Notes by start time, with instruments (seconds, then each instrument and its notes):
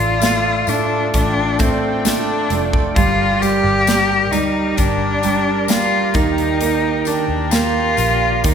Already playing: grand piano A3, cello F4, analog synth pad F4 A4 D5 A5
0.00 fingered electric bass A1
0.21 grand piano A3, snare, closed hi-hat, tambourine
0.67 fingered electric bass A2, grand piano A3, cello D4, closed hi-hat, tambourine
1.14 fingered electric bass A1, cello D4, analog synth pad G5, kick, closed hi-hat, tambourine
1.59 grand piano A3, cello C4, kick, closed hi-hat, tambourine
2.04 grand piano A3, cello D4, snare, closed hi-hat, tambourine
2.50 fingered electric bass F1, grand piano A3, closed hi-hat, tambourine
2.73 kick
2.95 fingered electric bass G1, grand piano G3, cello F4, analog synth pad G4 A#4 A#5, kick, closed hi-hat
3.41 grand piano G3, cello G4, closed hi-hat, tambourine
3.64 fingered electric bass G1
3.87 grand piano G3, snare, closed hi-hat, tambourine
4.32 fingered electric bass D2, grand piano G3, cello D#4, closed hi-hat, tambourine
4.77 fingered electric bass G1, cello D4, kick, closed hi-hat, tambourine
5.23 grand piano G3, closed hi-hat, tambourine
5.68 grand piano G3, cello F4, snare, closed hi-hat, tambourine
6.14 fingered electric bass D#2, grand piano D#3, cello D#4, analog synth pad G5, kick, closed hi-hat
6.38 closed hi-hat
6.61 grand piano A#3, closed hi-hat, tambourine
7.05 grand piano D#3, cello D4, closed hi-hat, tambourine
7.28 fingered electric bass D#2
7.51 grand piano A#3, cello F4, snare, closed hi-hat, tambourine
7.97 fingered electric bass A#1, analog synth pad D5, closed hi-hat, tambourine
8.44 fingered electric bass D#2, grand piano D#3, cello D#4, kick, closed hi-hat, tambourine